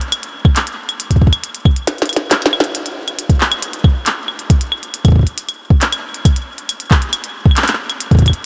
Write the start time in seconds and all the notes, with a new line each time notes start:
0.01 closed hi-hat
0.12 closed hi-hat, claves
0.23 closed hi-hat
0.45 kick, claves
0.56 clap, closed hi-hat
0.67 closed hi-hat
0.89 closed hi-hat, claves
1.00 closed hi-hat
1.11 kick, closed hi-hat
1.16 kick
1.22 kick
1.27 kick
1.33 closed hi-hat, claves
1.44 closed hi-hat
1.55 closed hi-hat
1.65 kick, claves
1.76 closed hi-hat
1.87 snare, closed hi-hat
1.98 snare, closed hi-hat
2.02 closed hi-hat
2.06 closed hi-hat
2.09 closed hi-hat, claves
2.13 snare, closed hi-hat
2.16 closed hi-hat
2.31 snare, clap, closed hi-hat
2.42 snare, closed hi-hat
2.53 claves
2.60 snare, closed hi-hat
2.75 closed hi-hat
2.86 closed hi-hat
3.08 closed hi-hat, claves
3.19 closed hi-hat
3.29 kick, closed hi-hat
3.41 clap
3.52 closed hi-hat, claves
3.62 closed hi-hat
3.73 closed hi-hat
3.84 kick, claves
4.06 clap, closed hi-hat
4.28 claves
4.39 closed hi-hat
4.50 kick, closed hi-hat
4.61 closed hi-hat
4.72 claves
4.83 closed hi-hat
4.94 closed hi-hat
5.05 kick, closed hi-hat, claves
5.08 kick
5.12 kick
5.16 kick
5.19 kick
5.23 kick, closed hi-hat
5.38 closed hi-hat
5.49 closed hi-hat, claves
5.70 kick
5.81 clap, closed hi-hat
5.92 closed hi-hat, claves
6.14 closed hi-hat
6.25 kick, closed hi-hat, claves
6.36 closed hi-hat
6.58 closed hi-hat
6.69 closed hi-hat, claves
6.80 closed hi-hat
6.91 kick, clap
7.02 closed hi-hat
7.13 closed hi-hat, claves
7.24 closed hi-hat
7.46 kick
7.51 claves
7.57 clap, closed hi-hat
7.62 clap
7.68 clap, closed hi-hat
7.73 clap
7.90 closed hi-hat, claves
8.00 closed hi-hat
8.11 kick, closed hi-hat
8.15 kick
8.19 kick, closed hi-hat
8.22 kick
8.26 kick, closed hi-hat, claves
8.30 kick, closed hi-hat